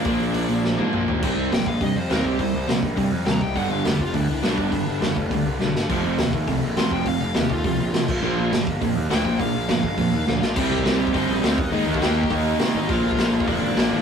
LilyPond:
<<
  \new Staff \with { instrumentName = "Lead electric guitar" } { \time 4/4 \key bes \mixolydian \tempo 4 = 206 <d' d''>2. r4 | \key c \dorian r4 g''8 f''8 ees''8 c''8 bes'8 g'8 | c''4 r2 bes''8 g''8 | fis''8 f''8 g'8 f'8 d'2~ |
d'4 r2. | r2. c'''8 g''8 | f''8 f''8 g'8 f'8 f'2~ | f'4 r2 g''4 |
f''4 f''8 f''2 <f' f''>8 | \key c \minor <g' g''>2 <ees' ees''>2 | <ees' ees''>8 <g' g''>4. r4. <ees' ees''>8 | <f' f''>2 <d' d''>2 | }
  \new Staff \with { instrumentName = "Overdriven electric guitar" } { \clef bass \time 4/4 \key bes \mixolydian <bes, f bes d'>1 | \key c \dorian <c g c' ees'>4 <c g c' ees'>4 <c g c' ees'>4 <c g c' ees'>4 | <c g c' ees'>4 <c g c' ees'>4 <c g c' ees'>4 <c g c' ees'>4 | <g, d g b d'>4 <g, d g b d'>4 <g, d g b d'>4 <g, d g b d'>4 |
<g, d g b d'>4 <g, d g b d'>4 <g, d g b d'>4 <g, d g b d'>4 | <f, c f a c'>4 <f, c f a c'>4 <f, c f a c'>4 <f, c f a c'>4 | <f, c f a c'>4 <f, c f a c'>4 <f, c f a c'>4 <f, c f a c'>8 r8 | <bes, f bes d'>4 <bes, f bes d'>4 <bes, f bes d'>4 <bes, f bes d'>4 |
<bes, f bes d'>4 <bes, f bes d'>4 <bes, f bes d'>4 <bes, f bes d'>4 | \key c \minor <c g c' ees'>4 <c g c' ees'>4 <c g c' ees'>4 <c g c' ees'>8 r8 | <ees g bes ees'>4 <ees g bes ees'>4 <ees g bes ees'>4 <ees g bes ees'>4 | <bes, d f bes f'>4 <bes, d f bes f'>4 <bes, d f bes f'>4 <bes, d f bes f'>4 | }
  \new Staff \with { instrumentName = "Distorted electric guitar" } { \clef bass \time 4/4 \key bes \mixolydian <bes, f bes>2~ <bes, f bes>8 <bes, f bes>8 <bes, f bes>4 | \key c \dorian <c g c'>4 <c g>8 r8 <c g>8 r8 <c g c'>4 | <c g>8 r8 <c g>8 r8 <c g>8 r8 <c g>8 r8 | <g, d g>4 <g, d>8 r8 <g, d>8 r8 <g, d g>4 |
<g, d>8 r8 <g, d>8 r8 <g, d>8 r8 <g, d>8 r8 | <f, c f>4 <f, c>8 r8 <f, c>8 r8 <f, c f>4 | <f, c>8 r8 <f, c>8 r8 <f, c>8 r8 <f, c>8 r8 | <bes, f bes>4 <bes, f>8 r8 <bes, f>8 r8 <bes, f bes>4 |
<bes, f>8 r8 <bes, f>8 r8 <bes, f>8 r8 <bes, f>8 r8 | \key c \minor <c g c'>4 <c g c'>4 <c g c'>4 <c g c'>8 r8 | <ees bes ees'>4 <ees bes ees'>4 <ees bes ees'>4 <ees bes ees'>4 | <bes, f bes>4 <bes, f bes>4 <bes, f bes>4 <bes, f bes>4 | }
  \new Staff \with { instrumentName = "Overdriven electric guitar" } { \clef bass \time 4/4 \key bes \mixolydian <bes, f bes>2~ <bes, f bes>8 <bes, f bes>8 <bes, f bes>4 | \key c \dorian <c g c'>4 <c g>8 r8 <c g>8 r8 <c g c'>4 | <c g>8 r8 <c g>8 r8 <c g>8 r8 <c g>8 r8 | <g, d g>4 <g, d>8 r8 <g, d>8 r8 <g, d g>4 |
<g, d>8 r8 <g, d>8 r8 <g, d>8 r8 <g, d>8 r8 | <f, c f>4 <f, c>8 r8 <f, c>8 r8 <f, c f>4 | <f, c>8 r8 <f, c>8 r8 <f, c>8 r8 <f, c>8 r8 | <bes, f bes>4 <bes, f>8 r8 <bes, f>8 r8 <bes, f bes>4 |
<bes, f>8 r8 <bes, f>8 r8 <bes, f>8 r8 <bes, f>8 r8 | \key c \minor <c g c'>4 <c g c'>4 <c g c'>4 <c g c'>8 r8 | <ees bes ees'>4 <ees bes ees'>4 <ees bes ees'>4 <ees bes ees'>4 | <bes, f bes>4 <bes, f bes>4 <bes, f bes>4 <bes, f bes>4 | }
  \new Staff \with { instrumentName = "Picked electric bass" } { \clef bass \time 4/4 \key bes \mixolydian bes,,8 bes,,8 bes,,8 bes,,8 bes,,8 aes,8 bes,,8 aes,,8 | \key c \dorian c,8 c,8 bes,,8 bes,,8 g,8 f,8 ees,8 c,8 | c,8 c,8 bes,,8 bes,,8 g,8 f,8 ees,8 c,8 | g,,8 g,,8 f,,8 f,,8 d,8 c,8 b,,8 g,,8 |
g,,8 g,,8 f,,8 f,,8 d,8 c,8 b,,8 g,,8 | f,,8 f,,8 ees,8 ees,8 c,8 bes,,8 a,,8 f,,8 | f,,8 f,,8 ees,8 ees,8 c,8 bes,,8 a,,8 bes,,8 | bes,,8 bes,,8 g,,8 g,,8 f,8 ees,8 d,8 bes,,8 |
bes,,8 bes,,8 g,,8 g,,8 f,8 ees,8 d,8 bes,,8 | \key c \minor c,8 c,8 c,8 c,8 g,,8 bes,,8 d,8 ees,8 | aes,8 ees,8 ees,4 ees,4 c8 aes,,8 | bes,,8 bes,,8 bes,,8 bes,,8 f,,8 aes,,8 bes,,8 aes,,8 | }
  \new DrumStaff \with { instrumentName = "Drums" } \drummode { \time 4/4 <hho bd>8 hho8 hho8 hho8 sn8 tommh8 toml8 tomfh8 | <cymc bd>4 <hho sn>8 bd8 <hho bd>4 <hho sn>8 bd8 | <hho bd>4 <hho sn>8 bd8 <hho bd>4 <hho sn>8 bd8 | <hho bd>4 <hho sn>8 bd8 <hho bd>4 <hho sn>8 bd8 |
<hho bd>4 <hho sn>8 bd8 <hho bd>4 sn8 sn8 | <cymc hho bd>4 <hho sn>8 bd8 <hho bd>4 <hho sn>8 bd8 | <hho bd>4 <hho sn>8 bd8 <hho bd>4 <hho sn>8 <cymc bd>8 | r4 <hho sn>8 bd8 <hho bd>4 <hho sn>8 bd8 |
<hho bd>4 <hho sn>8 bd8 <hho bd>4 sn8 sn8 | <cymc bd>8. bd16 <hho sn>8. bd16 <hho bd>4 <hho sn>8 bd8 | hho8. bd16 <hho sn>8. bd16 <hho bd>4 <hho sn>4 | <hho bd>8. bd16 <hho sn>8. bd16 <hho bd>4 <hho sn>4 | }
>>